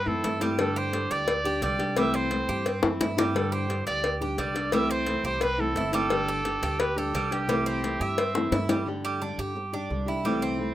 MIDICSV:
0, 0, Header, 1, 7, 480
1, 0, Start_track
1, 0, Tempo, 345224
1, 813, Time_signature, 4, 2, 24, 8
1, 14937, End_track
2, 0, Start_track
2, 0, Title_t, "Trumpet"
2, 0, Program_c, 0, 56
2, 106, Note_on_c, 0, 69, 103
2, 580, Note_off_c, 0, 69, 0
2, 834, Note_on_c, 0, 69, 98
2, 1075, Note_on_c, 0, 72, 101
2, 1096, Note_off_c, 0, 69, 0
2, 1547, Note_on_c, 0, 74, 121
2, 1568, Note_off_c, 0, 72, 0
2, 2262, Note_off_c, 0, 74, 0
2, 2274, Note_on_c, 0, 74, 98
2, 2754, Note_on_c, 0, 76, 108
2, 2775, Note_off_c, 0, 74, 0
2, 2996, Note_on_c, 0, 72, 101
2, 3017, Note_off_c, 0, 76, 0
2, 4054, Note_off_c, 0, 72, 0
2, 4668, Note_on_c, 0, 69, 87
2, 4898, Note_on_c, 0, 72, 91
2, 4919, Note_off_c, 0, 69, 0
2, 5371, Note_off_c, 0, 72, 0
2, 5380, Note_on_c, 0, 74, 108
2, 5824, Note_off_c, 0, 74, 0
2, 6103, Note_on_c, 0, 74, 101
2, 6579, Note_on_c, 0, 76, 115
2, 6600, Note_off_c, 0, 74, 0
2, 6824, Note_on_c, 0, 72, 113
2, 6844, Note_off_c, 0, 76, 0
2, 7298, Note_off_c, 0, 72, 0
2, 7307, Note_on_c, 0, 72, 111
2, 7549, Note_on_c, 0, 71, 112
2, 7570, Note_off_c, 0, 72, 0
2, 7790, Note_on_c, 0, 69, 111
2, 7811, Note_off_c, 0, 71, 0
2, 8255, Note_off_c, 0, 69, 0
2, 8263, Note_on_c, 0, 69, 108
2, 9452, Note_on_c, 0, 71, 107
2, 9473, Note_off_c, 0, 69, 0
2, 9698, Note_on_c, 0, 69, 91
2, 9719, Note_off_c, 0, 71, 0
2, 10185, Note_on_c, 0, 67, 93
2, 10206, Note_off_c, 0, 69, 0
2, 10653, Note_off_c, 0, 67, 0
2, 10661, Note_on_c, 0, 67, 93
2, 11147, Note_on_c, 0, 76, 114
2, 11168, Note_off_c, 0, 67, 0
2, 12100, Note_off_c, 0, 76, 0
2, 14937, End_track
3, 0, Start_track
3, 0, Title_t, "Cuban tres"
3, 0, Program_c, 1, 25
3, 0, Note_on_c, 1, 60, 66
3, 320, Note_off_c, 1, 60, 0
3, 336, Note_on_c, 1, 64, 72
3, 568, Note_off_c, 1, 64, 0
3, 578, Note_on_c, 1, 55, 97
3, 1042, Note_off_c, 1, 55, 0
3, 1061, Note_on_c, 1, 67, 93
3, 1524, Note_off_c, 1, 67, 0
3, 1545, Note_on_c, 1, 67, 91
3, 2006, Note_off_c, 1, 67, 0
3, 2021, Note_on_c, 1, 67, 89
3, 2251, Note_off_c, 1, 67, 0
3, 2261, Note_on_c, 1, 55, 85
3, 2724, Note_off_c, 1, 55, 0
3, 2742, Note_on_c, 1, 55, 86
3, 2972, Note_off_c, 1, 55, 0
3, 2973, Note_on_c, 1, 60, 90
3, 3440, Note_off_c, 1, 60, 0
3, 3459, Note_on_c, 1, 67, 87
3, 3690, Note_off_c, 1, 67, 0
3, 3702, Note_on_c, 1, 60, 68
3, 4165, Note_off_c, 1, 60, 0
3, 4184, Note_on_c, 1, 64, 76
3, 4413, Note_off_c, 1, 64, 0
3, 4425, Note_on_c, 1, 55, 97
3, 4886, Note_off_c, 1, 55, 0
3, 4895, Note_on_c, 1, 67, 82
3, 5361, Note_off_c, 1, 67, 0
3, 5384, Note_on_c, 1, 67, 79
3, 5845, Note_off_c, 1, 67, 0
3, 5863, Note_on_c, 1, 67, 71
3, 6091, Note_off_c, 1, 67, 0
3, 6102, Note_on_c, 1, 55, 90
3, 6563, Note_off_c, 1, 55, 0
3, 6580, Note_on_c, 1, 55, 93
3, 6810, Note_off_c, 1, 55, 0
3, 6821, Note_on_c, 1, 60, 93
3, 7283, Note_off_c, 1, 60, 0
3, 7294, Note_on_c, 1, 67, 88
3, 7526, Note_off_c, 1, 67, 0
3, 7534, Note_on_c, 1, 60, 68
3, 7999, Note_off_c, 1, 60, 0
3, 8023, Note_on_c, 1, 64, 79
3, 8251, Note_off_c, 1, 64, 0
3, 8257, Note_on_c, 1, 55, 107
3, 8721, Note_off_c, 1, 55, 0
3, 8738, Note_on_c, 1, 67, 91
3, 9201, Note_off_c, 1, 67, 0
3, 9218, Note_on_c, 1, 67, 89
3, 9681, Note_off_c, 1, 67, 0
3, 9703, Note_on_c, 1, 67, 85
3, 9931, Note_off_c, 1, 67, 0
3, 9937, Note_on_c, 1, 55, 94
3, 10395, Note_off_c, 1, 55, 0
3, 10412, Note_on_c, 1, 55, 89
3, 10645, Note_off_c, 1, 55, 0
3, 10652, Note_on_c, 1, 60, 87
3, 11118, Note_off_c, 1, 60, 0
3, 11134, Note_on_c, 1, 67, 85
3, 11366, Note_off_c, 1, 67, 0
3, 11372, Note_on_c, 1, 60, 64
3, 11838, Note_off_c, 1, 60, 0
3, 11852, Note_on_c, 1, 64, 80
3, 12085, Note_off_c, 1, 64, 0
3, 12089, Note_on_c, 1, 55, 86
3, 12323, Note_off_c, 1, 55, 0
3, 12578, Note_on_c, 1, 55, 97
3, 12808, Note_off_c, 1, 55, 0
3, 12814, Note_on_c, 1, 62, 75
3, 13046, Note_off_c, 1, 62, 0
3, 13054, Note_on_c, 1, 67, 89
3, 13519, Note_off_c, 1, 67, 0
3, 13536, Note_on_c, 1, 62, 79
3, 14000, Note_off_c, 1, 62, 0
3, 14016, Note_on_c, 1, 64, 77
3, 14248, Note_off_c, 1, 64, 0
3, 14251, Note_on_c, 1, 55, 91
3, 14485, Note_off_c, 1, 55, 0
3, 14492, Note_on_c, 1, 60, 84
3, 14937, Note_off_c, 1, 60, 0
3, 14937, End_track
4, 0, Start_track
4, 0, Title_t, "Nylon-string guitar"
4, 0, Program_c, 2, 24
4, 80, Note_on_c, 2, 64, 82
4, 93, Note_on_c, 2, 60, 77
4, 104, Note_on_c, 2, 57, 70
4, 107, Note_on_c, 2, 52, 65
4, 307, Note_off_c, 2, 52, 0
4, 317, Note_off_c, 2, 64, 0
4, 320, Note_off_c, 2, 57, 0
4, 323, Note_off_c, 2, 60, 0
4, 324, Note_on_c, 2, 52, 52
4, 337, Note_on_c, 2, 57, 54
4, 344, Note_on_c, 2, 60, 58
4, 355, Note_on_c, 2, 64, 64
4, 546, Note_off_c, 2, 64, 0
4, 559, Note_off_c, 2, 52, 0
4, 559, Note_off_c, 2, 60, 0
4, 563, Note_on_c, 2, 64, 73
4, 566, Note_off_c, 2, 57, 0
4, 576, Note_on_c, 2, 60, 71
4, 584, Note_on_c, 2, 57, 62
4, 596, Note_on_c, 2, 52, 68
4, 799, Note_off_c, 2, 64, 0
4, 801, Note_off_c, 2, 52, 0
4, 805, Note_off_c, 2, 60, 0
4, 807, Note_on_c, 2, 50, 88
4, 809, Note_off_c, 2, 57, 0
4, 823, Note_on_c, 2, 55, 86
4, 830, Note_on_c, 2, 62, 94
4, 840, Note_on_c, 2, 67, 92
4, 1271, Note_off_c, 2, 50, 0
4, 1283, Note_off_c, 2, 55, 0
4, 1288, Note_on_c, 2, 50, 55
4, 1293, Note_off_c, 2, 62, 0
4, 1298, Note_off_c, 2, 67, 0
4, 1300, Note_on_c, 2, 55, 61
4, 1313, Note_on_c, 2, 62, 66
4, 1319, Note_on_c, 2, 67, 62
4, 1753, Note_off_c, 2, 50, 0
4, 1756, Note_off_c, 2, 55, 0
4, 1760, Note_off_c, 2, 62, 0
4, 1766, Note_off_c, 2, 67, 0
4, 2007, Note_on_c, 2, 67, 75
4, 2022, Note_on_c, 2, 62, 73
4, 2038, Note_on_c, 2, 55, 63
4, 2242, Note_off_c, 2, 55, 0
4, 2242, Note_off_c, 2, 67, 0
4, 2242, Note_on_c, 2, 50, 54
4, 2249, Note_off_c, 2, 62, 0
4, 2259, Note_on_c, 2, 55, 55
4, 2269, Note_on_c, 2, 62, 55
4, 2275, Note_on_c, 2, 67, 59
4, 2470, Note_off_c, 2, 67, 0
4, 2480, Note_off_c, 2, 50, 0
4, 2485, Note_off_c, 2, 62, 0
4, 2487, Note_on_c, 2, 67, 74
4, 2488, Note_off_c, 2, 55, 0
4, 2502, Note_on_c, 2, 62, 65
4, 2518, Note_on_c, 2, 55, 56
4, 2722, Note_off_c, 2, 67, 0
4, 2726, Note_on_c, 2, 48, 85
4, 2729, Note_off_c, 2, 62, 0
4, 2732, Note_on_c, 2, 52, 80
4, 2735, Note_off_c, 2, 55, 0
4, 2741, Note_on_c, 2, 57, 78
4, 2746, Note_on_c, 2, 60, 85
4, 2754, Note_on_c, 2, 64, 83
4, 3191, Note_off_c, 2, 52, 0
4, 3201, Note_off_c, 2, 48, 0
4, 3204, Note_off_c, 2, 57, 0
4, 3208, Note_on_c, 2, 52, 51
4, 3212, Note_off_c, 2, 60, 0
4, 3215, Note_off_c, 2, 64, 0
4, 3221, Note_on_c, 2, 57, 53
4, 3227, Note_on_c, 2, 60, 65
4, 3241, Note_on_c, 2, 64, 59
4, 3677, Note_off_c, 2, 52, 0
4, 3682, Note_off_c, 2, 57, 0
4, 3687, Note_off_c, 2, 60, 0
4, 3688, Note_off_c, 2, 64, 0
4, 3925, Note_on_c, 2, 64, 74
4, 3937, Note_on_c, 2, 60, 67
4, 3945, Note_on_c, 2, 57, 65
4, 3956, Note_on_c, 2, 52, 60
4, 4145, Note_off_c, 2, 52, 0
4, 4160, Note_off_c, 2, 57, 0
4, 4161, Note_off_c, 2, 64, 0
4, 4162, Note_on_c, 2, 52, 54
4, 4167, Note_off_c, 2, 60, 0
4, 4177, Note_on_c, 2, 57, 50
4, 4184, Note_on_c, 2, 60, 52
4, 4195, Note_on_c, 2, 64, 51
4, 4388, Note_off_c, 2, 64, 0
4, 4399, Note_off_c, 2, 52, 0
4, 4402, Note_off_c, 2, 60, 0
4, 4405, Note_on_c, 2, 64, 74
4, 4407, Note_off_c, 2, 57, 0
4, 4418, Note_on_c, 2, 60, 66
4, 4429, Note_on_c, 2, 57, 64
4, 4439, Note_on_c, 2, 52, 64
4, 4640, Note_off_c, 2, 64, 0
4, 4644, Note_off_c, 2, 52, 0
4, 4647, Note_off_c, 2, 60, 0
4, 4649, Note_on_c, 2, 50, 86
4, 4653, Note_off_c, 2, 57, 0
4, 4660, Note_on_c, 2, 55, 91
4, 4669, Note_on_c, 2, 62, 94
4, 4678, Note_on_c, 2, 67, 82
4, 5105, Note_off_c, 2, 50, 0
4, 5119, Note_off_c, 2, 55, 0
4, 5122, Note_on_c, 2, 50, 49
4, 5132, Note_off_c, 2, 62, 0
4, 5135, Note_on_c, 2, 55, 57
4, 5137, Note_off_c, 2, 67, 0
4, 5147, Note_on_c, 2, 62, 64
4, 5157, Note_on_c, 2, 67, 53
4, 5598, Note_off_c, 2, 50, 0
4, 5605, Note_off_c, 2, 55, 0
4, 5608, Note_off_c, 2, 62, 0
4, 5613, Note_off_c, 2, 67, 0
4, 5854, Note_on_c, 2, 67, 82
4, 5869, Note_on_c, 2, 62, 64
4, 5880, Note_on_c, 2, 55, 64
4, 6077, Note_off_c, 2, 55, 0
4, 6081, Note_on_c, 2, 50, 47
4, 6085, Note_off_c, 2, 67, 0
4, 6087, Note_off_c, 2, 62, 0
4, 6094, Note_on_c, 2, 55, 50
4, 6103, Note_on_c, 2, 62, 57
4, 6111, Note_on_c, 2, 67, 51
4, 6300, Note_off_c, 2, 67, 0
4, 6317, Note_on_c, 2, 67, 63
4, 6318, Note_off_c, 2, 50, 0
4, 6322, Note_off_c, 2, 62, 0
4, 6324, Note_off_c, 2, 55, 0
4, 6338, Note_on_c, 2, 62, 68
4, 6351, Note_on_c, 2, 55, 55
4, 6556, Note_off_c, 2, 67, 0
4, 6562, Note_on_c, 2, 48, 84
4, 6565, Note_on_c, 2, 52, 78
4, 6567, Note_off_c, 2, 62, 0
4, 6570, Note_off_c, 2, 55, 0
4, 6575, Note_on_c, 2, 57, 88
4, 6583, Note_on_c, 2, 60, 80
4, 6591, Note_on_c, 2, 64, 91
4, 7018, Note_off_c, 2, 52, 0
4, 7033, Note_off_c, 2, 57, 0
4, 7034, Note_on_c, 2, 52, 61
4, 7038, Note_off_c, 2, 48, 0
4, 7043, Note_off_c, 2, 60, 0
4, 7050, Note_on_c, 2, 57, 53
4, 7052, Note_off_c, 2, 64, 0
4, 7060, Note_on_c, 2, 60, 64
4, 7067, Note_on_c, 2, 64, 61
4, 7511, Note_off_c, 2, 52, 0
4, 7518, Note_off_c, 2, 57, 0
4, 7521, Note_off_c, 2, 60, 0
4, 7522, Note_off_c, 2, 64, 0
4, 7759, Note_on_c, 2, 64, 81
4, 7769, Note_on_c, 2, 60, 68
4, 7780, Note_on_c, 2, 57, 71
4, 7789, Note_on_c, 2, 52, 63
4, 7977, Note_off_c, 2, 52, 0
4, 7988, Note_off_c, 2, 57, 0
4, 7993, Note_on_c, 2, 52, 51
4, 7996, Note_off_c, 2, 64, 0
4, 8001, Note_off_c, 2, 60, 0
4, 8005, Note_on_c, 2, 57, 57
4, 8016, Note_on_c, 2, 60, 59
4, 8024, Note_on_c, 2, 64, 64
4, 8217, Note_off_c, 2, 64, 0
4, 8228, Note_off_c, 2, 60, 0
4, 8234, Note_off_c, 2, 52, 0
4, 8234, Note_on_c, 2, 64, 76
4, 8239, Note_off_c, 2, 57, 0
4, 8244, Note_on_c, 2, 60, 69
4, 8256, Note_on_c, 2, 57, 70
4, 8265, Note_on_c, 2, 52, 61
4, 8471, Note_off_c, 2, 52, 0
4, 8474, Note_off_c, 2, 64, 0
4, 8476, Note_on_c, 2, 50, 85
4, 8479, Note_off_c, 2, 60, 0
4, 8485, Note_off_c, 2, 57, 0
4, 8494, Note_on_c, 2, 55, 90
4, 8503, Note_on_c, 2, 62, 82
4, 8512, Note_on_c, 2, 67, 102
4, 8940, Note_off_c, 2, 50, 0
4, 8955, Note_off_c, 2, 55, 0
4, 8957, Note_on_c, 2, 50, 51
4, 8961, Note_off_c, 2, 62, 0
4, 8971, Note_on_c, 2, 55, 56
4, 8972, Note_off_c, 2, 67, 0
4, 8977, Note_on_c, 2, 62, 62
4, 8989, Note_on_c, 2, 67, 72
4, 9425, Note_off_c, 2, 50, 0
4, 9434, Note_off_c, 2, 55, 0
4, 9436, Note_off_c, 2, 62, 0
4, 9441, Note_off_c, 2, 67, 0
4, 9679, Note_on_c, 2, 67, 71
4, 9692, Note_on_c, 2, 62, 66
4, 9710, Note_on_c, 2, 55, 65
4, 9913, Note_off_c, 2, 55, 0
4, 9916, Note_off_c, 2, 67, 0
4, 9916, Note_on_c, 2, 50, 49
4, 9922, Note_off_c, 2, 62, 0
4, 9930, Note_on_c, 2, 55, 53
4, 9949, Note_on_c, 2, 67, 60
4, 10146, Note_off_c, 2, 67, 0
4, 10154, Note_off_c, 2, 50, 0
4, 10161, Note_off_c, 2, 55, 0
4, 10163, Note_on_c, 2, 67, 81
4, 10181, Note_on_c, 2, 62, 65
4, 10192, Note_on_c, 2, 55, 62
4, 10394, Note_on_c, 2, 48, 86
4, 10398, Note_off_c, 2, 67, 0
4, 10405, Note_on_c, 2, 52, 86
4, 10407, Note_off_c, 2, 62, 0
4, 10410, Note_off_c, 2, 55, 0
4, 10415, Note_on_c, 2, 57, 87
4, 10417, Note_on_c, 2, 60, 89
4, 10426, Note_on_c, 2, 64, 91
4, 10863, Note_off_c, 2, 52, 0
4, 10871, Note_off_c, 2, 57, 0
4, 10873, Note_off_c, 2, 48, 0
4, 10879, Note_on_c, 2, 52, 58
4, 10885, Note_off_c, 2, 60, 0
4, 10888, Note_on_c, 2, 57, 58
4, 10889, Note_off_c, 2, 64, 0
4, 10902, Note_on_c, 2, 60, 55
4, 10910, Note_on_c, 2, 64, 64
4, 11356, Note_off_c, 2, 52, 0
4, 11360, Note_off_c, 2, 57, 0
4, 11362, Note_off_c, 2, 60, 0
4, 11366, Note_off_c, 2, 64, 0
4, 11602, Note_on_c, 2, 64, 75
4, 11617, Note_on_c, 2, 60, 78
4, 11623, Note_on_c, 2, 57, 57
4, 11632, Note_on_c, 2, 52, 62
4, 11823, Note_off_c, 2, 52, 0
4, 11838, Note_off_c, 2, 64, 0
4, 11839, Note_off_c, 2, 57, 0
4, 11840, Note_on_c, 2, 52, 51
4, 11845, Note_off_c, 2, 60, 0
4, 11855, Note_on_c, 2, 57, 47
4, 11865, Note_on_c, 2, 60, 55
4, 11872, Note_on_c, 2, 64, 53
4, 12059, Note_off_c, 2, 64, 0
4, 12075, Note_on_c, 2, 64, 68
4, 12076, Note_off_c, 2, 60, 0
4, 12077, Note_off_c, 2, 52, 0
4, 12084, Note_off_c, 2, 57, 0
4, 12093, Note_on_c, 2, 60, 57
4, 12099, Note_on_c, 2, 57, 70
4, 12111, Note_on_c, 2, 52, 55
4, 12312, Note_off_c, 2, 52, 0
4, 12314, Note_off_c, 2, 64, 0
4, 12318, Note_on_c, 2, 50, 81
4, 12323, Note_off_c, 2, 60, 0
4, 12326, Note_off_c, 2, 57, 0
4, 12331, Note_on_c, 2, 55, 78
4, 12341, Note_on_c, 2, 62, 88
4, 12350, Note_on_c, 2, 67, 86
4, 12790, Note_off_c, 2, 50, 0
4, 12802, Note_off_c, 2, 55, 0
4, 12807, Note_off_c, 2, 62, 0
4, 12807, Note_on_c, 2, 50, 56
4, 12812, Note_off_c, 2, 67, 0
4, 12818, Note_on_c, 2, 55, 59
4, 12829, Note_on_c, 2, 62, 54
4, 12835, Note_on_c, 2, 67, 61
4, 13267, Note_off_c, 2, 50, 0
4, 13272, Note_off_c, 2, 55, 0
4, 13278, Note_off_c, 2, 62, 0
4, 13283, Note_off_c, 2, 67, 0
4, 13526, Note_on_c, 2, 67, 69
4, 13541, Note_on_c, 2, 62, 67
4, 13553, Note_on_c, 2, 55, 64
4, 13753, Note_off_c, 2, 55, 0
4, 13757, Note_on_c, 2, 50, 44
4, 13760, Note_off_c, 2, 67, 0
4, 13761, Note_off_c, 2, 62, 0
4, 13770, Note_on_c, 2, 55, 55
4, 13777, Note_on_c, 2, 62, 56
4, 13788, Note_on_c, 2, 67, 52
4, 13974, Note_off_c, 2, 67, 0
4, 13991, Note_on_c, 2, 67, 64
4, 13994, Note_off_c, 2, 62, 0
4, 13995, Note_off_c, 2, 50, 0
4, 14002, Note_off_c, 2, 55, 0
4, 14011, Note_on_c, 2, 62, 61
4, 14027, Note_on_c, 2, 55, 55
4, 14232, Note_on_c, 2, 48, 75
4, 14233, Note_off_c, 2, 67, 0
4, 14243, Note_off_c, 2, 62, 0
4, 14246, Note_on_c, 2, 52, 86
4, 14248, Note_off_c, 2, 55, 0
4, 14254, Note_on_c, 2, 57, 91
4, 14260, Note_on_c, 2, 60, 91
4, 14269, Note_on_c, 2, 64, 98
4, 14700, Note_off_c, 2, 52, 0
4, 14712, Note_off_c, 2, 57, 0
4, 14714, Note_off_c, 2, 48, 0
4, 14716, Note_on_c, 2, 52, 53
4, 14723, Note_off_c, 2, 60, 0
4, 14728, Note_on_c, 2, 57, 66
4, 14732, Note_off_c, 2, 64, 0
4, 14739, Note_on_c, 2, 60, 57
4, 14747, Note_on_c, 2, 64, 58
4, 14937, Note_off_c, 2, 52, 0
4, 14937, Note_off_c, 2, 57, 0
4, 14937, Note_off_c, 2, 60, 0
4, 14937, Note_off_c, 2, 64, 0
4, 14937, End_track
5, 0, Start_track
5, 0, Title_t, "Upright bass"
5, 0, Program_c, 3, 32
5, 93, Note_on_c, 3, 42, 74
5, 316, Note_off_c, 3, 42, 0
5, 338, Note_on_c, 3, 43, 104
5, 1458, Note_off_c, 3, 43, 0
5, 1543, Note_on_c, 3, 38, 87
5, 2209, Note_off_c, 3, 38, 0
5, 2252, Note_on_c, 3, 36, 111
5, 3375, Note_off_c, 3, 36, 0
5, 3458, Note_on_c, 3, 43, 105
5, 3903, Note_off_c, 3, 43, 0
5, 3936, Note_on_c, 3, 42, 71
5, 4159, Note_off_c, 3, 42, 0
5, 4175, Note_on_c, 3, 43, 112
5, 5295, Note_off_c, 3, 43, 0
5, 5371, Note_on_c, 3, 38, 100
5, 6042, Note_off_c, 3, 38, 0
5, 6087, Note_on_c, 3, 36, 96
5, 7210, Note_off_c, 3, 36, 0
5, 7283, Note_on_c, 3, 36, 101
5, 7957, Note_off_c, 3, 36, 0
5, 8002, Note_on_c, 3, 31, 110
5, 9127, Note_off_c, 3, 31, 0
5, 9211, Note_on_c, 3, 38, 98
5, 9881, Note_off_c, 3, 38, 0
5, 9922, Note_on_c, 3, 36, 99
5, 11047, Note_off_c, 3, 36, 0
5, 11127, Note_on_c, 3, 43, 93
5, 11799, Note_off_c, 3, 43, 0
5, 11843, Note_on_c, 3, 43, 93
5, 12968, Note_off_c, 3, 43, 0
5, 13048, Note_on_c, 3, 43, 91
5, 13720, Note_off_c, 3, 43, 0
5, 13769, Note_on_c, 3, 36, 104
5, 14893, Note_off_c, 3, 36, 0
5, 14937, End_track
6, 0, Start_track
6, 0, Title_t, "Muted nylon-string guitar strokes"
6, 1770, Note_on_c, 9, 29, 66
6, 1909, Note_off_c, 9, 29, 0
6, 3690, Note_on_c, 9, 29, 69
6, 3829, Note_off_c, 9, 29, 0
6, 5614, Note_on_c, 9, 29, 64
6, 5753, Note_off_c, 9, 29, 0
6, 7525, Note_on_c, 9, 29, 64
6, 7664, Note_off_c, 9, 29, 0
6, 9441, Note_on_c, 9, 29, 70
6, 9580, Note_off_c, 9, 29, 0
6, 11372, Note_on_c, 9, 29, 62
6, 11511, Note_off_c, 9, 29, 0
6, 13283, Note_on_c, 9, 29, 70
6, 13422, Note_off_c, 9, 29, 0
6, 14937, End_track
7, 0, Start_track
7, 0, Title_t, "Drums"
7, 334, Note_on_c, 9, 56, 86
7, 473, Note_off_c, 9, 56, 0
7, 572, Note_on_c, 9, 56, 75
7, 711, Note_off_c, 9, 56, 0
7, 815, Note_on_c, 9, 56, 106
7, 954, Note_off_c, 9, 56, 0
7, 1297, Note_on_c, 9, 56, 74
7, 1436, Note_off_c, 9, 56, 0
7, 1540, Note_on_c, 9, 56, 68
7, 1679, Note_off_c, 9, 56, 0
7, 1774, Note_on_c, 9, 56, 111
7, 1913, Note_off_c, 9, 56, 0
7, 2254, Note_on_c, 9, 56, 78
7, 2393, Note_off_c, 9, 56, 0
7, 2496, Note_on_c, 9, 56, 72
7, 2635, Note_off_c, 9, 56, 0
7, 2732, Note_on_c, 9, 56, 107
7, 2871, Note_off_c, 9, 56, 0
7, 3209, Note_on_c, 9, 56, 80
7, 3348, Note_off_c, 9, 56, 0
7, 3697, Note_on_c, 9, 56, 99
7, 3836, Note_off_c, 9, 56, 0
7, 3931, Note_on_c, 9, 60, 107
7, 4070, Note_off_c, 9, 60, 0
7, 4181, Note_on_c, 9, 56, 71
7, 4181, Note_on_c, 9, 61, 92
7, 4320, Note_off_c, 9, 56, 0
7, 4320, Note_off_c, 9, 61, 0
7, 4429, Note_on_c, 9, 56, 76
7, 4429, Note_on_c, 9, 61, 102
7, 4568, Note_off_c, 9, 56, 0
7, 4568, Note_off_c, 9, 61, 0
7, 4669, Note_on_c, 9, 56, 99
7, 4808, Note_off_c, 9, 56, 0
7, 5143, Note_on_c, 9, 56, 72
7, 5282, Note_off_c, 9, 56, 0
7, 5377, Note_on_c, 9, 56, 76
7, 5516, Note_off_c, 9, 56, 0
7, 5614, Note_on_c, 9, 56, 99
7, 5753, Note_off_c, 9, 56, 0
7, 6093, Note_on_c, 9, 56, 76
7, 6232, Note_off_c, 9, 56, 0
7, 6335, Note_on_c, 9, 56, 81
7, 6474, Note_off_c, 9, 56, 0
7, 6566, Note_on_c, 9, 56, 100
7, 6705, Note_off_c, 9, 56, 0
7, 7042, Note_on_c, 9, 56, 78
7, 7181, Note_off_c, 9, 56, 0
7, 7522, Note_on_c, 9, 56, 115
7, 7661, Note_off_c, 9, 56, 0
7, 8006, Note_on_c, 9, 56, 72
7, 8145, Note_off_c, 9, 56, 0
7, 8245, Note_on_c, 9, 56, 80
7, 8385, Note_off_c, 9, 56, 0
7, 8486, Note_on_c, 9, 56, 110
7, 8625, Note_off_c, 9, 56, 0
7, 8969, Note_on_c, 9, 56, 77
7, 9108, Note_off_c, 9, 56, 0
7, 9214, Note_on_c, 9, 56, 78
7, 9353, Note_off_c, 9, 56, 0
7, 9449, Note_on_c, 9, 56, 114
7, 9588, Note_off_c, 9, 56, 0
7, 9939, Note_on_c, 9, 56, 78
7, 10078, Note_off_c, 9, 56, 0
7, 10180, Note_on_c, 9, 56, 81
7, 10319, Note_off_c, 9, 56, 0
7, 10416, Note_on_c, 9, 56, 102
7, 10555, Note_off_c, 9, 56, 0
7, 10901, Note_on_c, 9, 56, 76
7, 11040, Note_off_c, 9, 56, 0
7, 11373, Note_on_c, 9, 56, 109
7, 11512, Note_off_c, 9, 56, 0
7, 11610, Note_on_c, 9, 60, 99
7, 11749, Note_off_c, 9, 60, 0
7, 11849, Note_on_c, 9, 56, 76
7, 11849, Note_on_c, 9, 61, 98
7, 11988, Note_off_c, 9, 56, 0
7, 11988, Note_off_c, 9, 61, 0
7, 12085, Note_on_c, 9, 56, 78
7, 12085, Note_on_c, 9, 61, 94
7, 12224, Note_off_c, 9, 56, 0
7, 12224, Note_off_c, 9, 61, 0
7, 14937, End_track
0, 0, End_of_file